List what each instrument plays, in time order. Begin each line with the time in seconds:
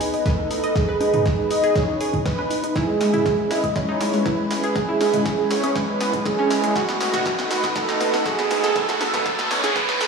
Already playing: analog synth pad B3 D#4 B4, soft synth lead B4
0.01 synth pluck D#4, open hi-hat
0.14 synth pluck D#4, open hi-hat
0.26 soft synth lead A4, synth pluck B4, kick, snare, closed hi-hat
0.39 synth pluck D#4
0.51 synth pluck D#4, open hi-hat
0.64 synth pluck D#5, closed hi-hat
0.76 synth pluck D#4, soft synth lead G#4, kick, snare, closed hi-hat
0.89 synth pluck B4
1.01 synth pluck D#4, open hi-hat, high conga
1.14 synth pluck D#4, closed hi-hat, mid tom
1.26 kick, snare, closed hi-hat
1.39 synth pluck D#4
1.51 synth pluck D#4, soft synth lead D#5, open hi-hat
1.64 synth pluck G#4, closed hi-hat
1.76 synth pluck D#4, soft synth lead C#5, kick, snare, closed hi-hat
1.89 synth pluck D#4
2.01 synth pluck G#4, open hi-hat
2.14 synth pluck D#4, kick, closed hi-hat, mid tom, high conga
2.25 synth pluck D#4, soft synth lead B4, kick, snare, closed hi-hat
2.39 synth pluck B4, high conga
2.50 synth pluck D#4, open hi-hat
2.64 synth pluck D#4, closed hi-hat
2.76 analog synth pad C#4 E4 B4, synth pluck E4, soft synth lead G#4, kick, snare, closed hi-hat, riser
2.88 synth pluck G#3
3.00 synth pluck G#3, snare, open hi-hat
3.14 synth pluck E4, closed hi-hat, mid tom
3.26 synth pluck G#3, kick, snare, closed hi-hat
3.39 synth pluck G#3
3.51 synth pluck E4, soft synth lead D#5, snare, open hi-hat
3.64 synth pluck G#3, kick, closed hi-hat, high woodblock
3.76 synth pluck G#3, soft synth lead C#5, kick, snare, closed hi-hat
3.89 synth pluck D#4
4.01 synth pluck G#3, snare, open hi-hat
4.14 synth pluck G#3, open hi-hat
4.26 synth pluck E4, soft synth lead B4, kick, snare, closed hi-hat
4.39 synth pluck G#3
4.51 synth pluck G#3, snare, open hi-hat
4.64 synth pluck G#4, closed hi-hat
4.76 synth pluck G#3, soft synth lead G#4, kick, snare, closed hi-hat
4.89 synth pluck E4
5.01 synth pluck G#3, snare, open hi-hat, high conga
5.14 synth pluck G#3, closed hi-hat, mid tom
5.26 kick, snare, closed hi-hat
5.39 synth pluck G#3
5.51 synth pluck G#3, soft synth lead C#5, snare, open hi-hat
5.63 synth pluck C#4, closed hi-hat, high woodblock
5.76 synth pluck G#3, soft synth lead B4, kick, snare, closed hi-hat
5.89 synth pluck G#3
6.01 synth pluck B3, snare, open hi-hat
6.13 synth pluck G#3, kick, closed hi-hat, mid tom, high conga
6.26 synth pluck G#3, soft synth lead G#4, kick, snare, closed hi-hat
6.38 synth pluck C#4, high conga
6.51 synth pluck G#3, snare, open hi-hat
6.64 synth pluck G#3, closed hi-hat
6.75 analog synth pad A3 D#4 F#4 B4, soft synth lead F#4, synth pluck F#4, kick, snare, closed hi-hat
6.89 synth pluck B3, snare
7.01 synth pluck B3, snare, open hi-hat
7.14 synth pluck F#4, snare, closed hi-hat, mid tom
7.26 synth pluck B3, kick, snare, closed hi-hat
7.39 synth pluck B3, snare
7.51 synth pluck F#4, soft synth lead B4, snare, open hi-hat
7.64 synth pluck B3, kick, snare, closed hi-hat, high woodblock
7.76 synth pluck B3, soft synth lead A4, kick, snare, closed hi-hat
7.89 synth pluck D#4, snare
8.01 synth pluck B3, snare, open hi-hat
8.14 synth pluck B3, snare, open hi-hat
8.26 synth pluck F#4, soft synth lead G#4, kick, snare, closed hi-hat
8.39 synth pluck B3, snare
8.51 synth pluck B3, snare, open hi-hat
8.64 synth pluck A4, snare, closed hi-hat
8.76 synth pluck B3, soft synth lead A4, kick, snare, closed hi-hat, noise sweep
8.89 synth pluck F#4, snare
9.01 synth pluck B3, snare, open hi-hat, high conga
9.14 synth pluck B3, snare, closed hi-hat, mid tom
9.26 kick, snare, closed hi-hat
9.39 synth pluck B3, snare
9.51 synth pluck B3, soft synth lead C#5, snare, open hi-hat
9.64 synth pluck G#4, snare, closed hi-hat, high conga, high woodblock
9.76 synth pluck B3, soft synth lead B4, kick, snare, closed hi-hat
9.89 synth pluck B3, snare, high woodblock
10.01 synth pluck A4, snare, open hi-hat